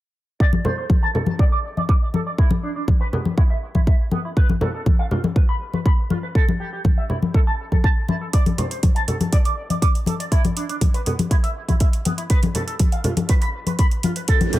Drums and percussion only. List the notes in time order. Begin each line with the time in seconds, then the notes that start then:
0.40 kick
0.53 high conga
0.65 low conga
0.90 kick, high conga
1.15 low conga
1.26 high conga
1.39 kick
1.77 high conga
1.89 kick
2.14 high conga
2.38 kick
2.51 high conga
2.88 kick, high conga
3.13 low conga
3.25 high conga
3.38 kick
3.75 kick, high conga
3.87 kick
4.11 high conga
4.37 kick
4.49 high conga
4.61 low conga
4.86 kick, high conga
5.11 low conga
5.24 high conga
5.36 kick
5.74 high conga
5.86 kick
6.10 high conga
6.35 kick
6.48 high conga
6.85 kick, high conga
7.10 low conga
7.22 high conga
7.34 kick
7.72 kick, high conga
7.84 kick
8.09 high conga
8.33 kick, closed hi-hat
8.46 closed hi-hat, high conga
8.58 closed hi-hat, low conga
8.71 closed hi-hat
8.83 kick, closed hi-hat, high conga
8.96 closed hi-hat
9.08 closed hi-hat, low conga
9.21 closed hi-hat, high conga
9.33 kick, closed hi-hat
9.45 closed hi-hat
9.70 closed hi-hat, high conga
9.82 kick, closed hi-hat
9.95 closed hi-hat
10.06 closed hi-hat, high conga
10.20 closed hi-hat
10.32 kick, closed hi-hat
10.45 closed hi-hat, high conga
10.57 closed hi-hat
10.69 closed hi-hat
10.81 kick, closed hi-hat, high conga
10.94 closed hi-hat
11.06 closed hi-hat, low conga
11.19 closed hi-hat, high conga
11.31 kick, closed hi-hat
11.44 closed hi-hat
11.69 kick, closed hi-hat, high conga
11.80 kick, closed hi-hat
11.93 closed hi-hat
12.05 closed hi-hat, high conga
12.18 closed hi-hat
12.30 kick, closed hi-hat
12.43 closed hi-hat, high conga
12.55 closed hi-hat, low conga
12.68 closed hi-hat
12.79 kick, closed hi-hat, high conga
12.92 closed hi-hat
13.04 closed hi-hat, low conga
13.17 closed hi-hat, high conga
13.29 kick, closed hi-hat
13.42 closed hi-hat
13.66 closed hi-hat, high conga
13.79 kick, closed hi-hat
13.91 closed hi-hat
14.03 closed hi-hat, high conga
14.16 closed hi-hat
14.28 kick, closed hi-hat
14.41 closed hi-hat, high conga
14.53 closed hi-hat, low conga